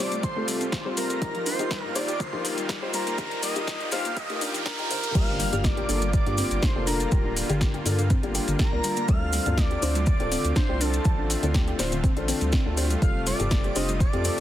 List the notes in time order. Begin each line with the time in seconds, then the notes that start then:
Already playing: C3 G3 A3 F4, riser
0.00 F2 C4 F4 G4 C5 D5 D6
0.12 A3, closed hi-hat, maracas
0.23 C5 C6, kick, closed hi-hat, maracas
0.36 A3 C4 F4 G4 A4
0.48 G3, open hi-hat, maracas
0.61 C4, closed hi-hat, maracas
0.72 kick, snare, closed hi-hat, maracas
0.85 G3 C4 F4 G4 C5
0.97 G3 A#4 A#5, open hi-hat, maracas
1.10 closed hi-hat, maracas
1.21 G1 D#3 G3 A#3 D#4 F4 G4 A#4 A#5, kick, closed hi-hat, maracas
1.35 F3, closed hi-hat
1.46 D4 C5 C6, open hi-hat, maracas
1.59 G1 D#4 F4 G4 A#4, closed hi-hat, maracas
1.71 G3, kick, snare, closed hi-hat, maracas
1.83 G2 A#4 A#5
1.95 G1 D#4 F4 G4 C5 D5 D6, open hi-hat, maracas
2.08 G4, closed hi-hat, maracas
2.20 D3 C5 C6, kick, closed hi-hat, maracas
2.33 G2 F3 D#4 F4 G4 A#4, kick
2.45 open hi-hat, maracas
2.58 G3, closed hi-hat, maracas
2.69 G3, kick, snare, closed hi-hat, maracas
2.82 D#4 F4 G4 C5
2.93 G3 A#4 A#5, open hi-hat, maracas
3.07 A#3, closed hi-hat, maracas
3.18 D3 G4 A#4 A#5, kick, closed hi-hat, maracas
3.31 closed hi-hat
3.43 G3 D#5 D#6, open hi-hat, maracas
3.56 G3 D#4 F4 G4 A#4, closed hi-hat, maracas
3.67 G3, kick, snare, closed hi-hat, maracas
3.81 closed hi-hat
3.92 G2 G3 D#4 F4 G4 C5 F5 F6, snare, open hi-hat, maracas
4.05 A#3, closed hi-hat, maracas
4.17 D#5 D#6, kick, closed hi-hat, maracas
4.30 G2 A3 D#4 F4 G4 A#4, closed hi-hat
4.41 D4, open hi-hat, maracas
4.54 F3, closed hi-hat, maracas
4.66 D4 A#4, kick, snare, closed hi-hat, maracas
4.79 D#4 F4 G4 A#4, closed hi-hat
4.90 D3 D#4 F4 G4 C5, open hi-hat, maracas
5.03 closed hi-hat, maracas
5.15 G1 D3 G3 A#3 D4 F4 G4 F5 F6, kick, closed hi-hat, crash, impact, maracas
5.40 G3, open hi-hat, maracas
5.53 G1 G2 A#3 D4 F4 G4, closed hi-hat, maracas
5.64 D5 D6, kick, snare, closed hi-hat, maracas
5.77 G4, closed hi-hat
5.89 G1 A#3 D4 F4 A4, open hi-hat, maracas
6.02 G3, closed hi-hat, maracas
6.13 D5 D6, kick, closed hi-hat, maracas
6.26 G2 A#3 D4 F4 G4, closed hi-hat
6.38 C4, open hi-hat, maracas
6.51 G1, closed hi-hat, maracas
6.62 D4 C5 C6, kick, snare, closed hi-hat, maracas
6.76 F1 A#3 D4 F4 G4 A4
6.87 D4 A#4 A#5, open hi-hat, maracas
7.00 closed hi-hat, maracas
7.11 D1 G3 A#3 D4 F4 G4, kick, closed hi-hat, maracas
7.25 D4
7.36 open hi-hat, maracas
7.49 G1 D3 A#3 D4 F4 G4, closed hi-hat, maracas
7.61 G4, kick, snare, closed hi-hat, maracas
7.74 G4, closed hi-hat
7.86 G2 A#3 D4 F4 A4, open hi-hat, maracas
7.99 D3, closed hi-hat, maracas
8.10 C4, kick, closed hi-hat, maracas
8.23 G1 A#3 D4 F4 G4, closed hi-hat
8.35 G4, open hi-hat, maracas
8.48 G1 D3, closed hi-hat, maracas
8.59 G4 A#4 A#5, kick, snare, closed hi-hat, maracas
8.72 C2 A#3 D4 F4 A#4
8.84 G3, open hi-hat, maracas
8.97 A#3, closed hi-hat, maracas
9.08 D2 G3 A3 C4 D4 F4 A4 F5 F6, kick, closed hi-hat, maracas
9.33 G3, open hi-hat, maracas
9.46 D2 G2 C4 D4 F4 A4, closed hi-hat, maracas
9.58 D5 D6, kick, snare, closed hi-hat, maracas
9.71 G4, closed hi-hat
9.82 D2 C4 D4 F4 C5, open hi-hat, maracas
9.95 G3, closed hi-hat, maracas
10.06 D5 D6, kick, closed hi-hat, maracas
10.20 D1 C4 D4 F4 G4 A4, closed hi-hat
10.31 C4, open hi-hat, maracas
10.45 D2, closed hi-hat, maracas
10.56 D4 C5 C6, kick, snare, closed hi-hat, maracas
10.69 C2 C4 D4 F4 G4 C5
10.81 D4 A4 A5, open hi-hat, maracas
10.93 closed hi-hat, maracas
11.04 A1 G3 C4 D4 F4 A4, kick, closed hi-hat, maracas
11.18 D4
11.30 open hi-hat, maracas
11.43 D2 D3 C4 D4 F4 A4, closed hi-hat, maracas
11.54 G4, kick, snare, closed hi-hat, maracas
11.67 G4, closed hi-hat
11.79 D1 C4 D4 F4 C5, snare, open hi-hat, maracas
11.92 D3, closed hi-hat, maracas
12.04 C4, kick, closed hi-hat, maracas
12.17 A1 C4 D4 F4 A4, closed hi-hat
12.28 C4, open hi-hat, maracas
12.41 D2 G3, closed hi-hat, maracas
12.52 C4, kick, snare, closed hi-hat, maracas
12.66 D2 C4 D4 F4 A4
12.77 C4 D4 F4 G4 C5, open hi-hat, maracas
12.90 G3, closed hi-hat, maracas
13.02 F1 C3 G3 C4 F4 G4 A4 F5 F6, kick, closed hi-hat, maracas
13.27 G3 D5 D6, open hi-hat, maracas
13.40 F1 G2 C4 F4 G4 A4, closed hi-hat, maracas
13.51 kick, snare, closed hi-hat, maracas
13.64 G4, closed hi-hat
13.76 F1 C4 D4 F4 G4 C5 D#5 D#6, open hi-hat, maracas
13.88 G3, closed hi-hat, maracas
14.00 D5 D6, kick, closed hi-hat, maracas
14.13 F2 C4 F4 G4 A4, closed hi-hat
14.25 C4, open hi-hat, maracas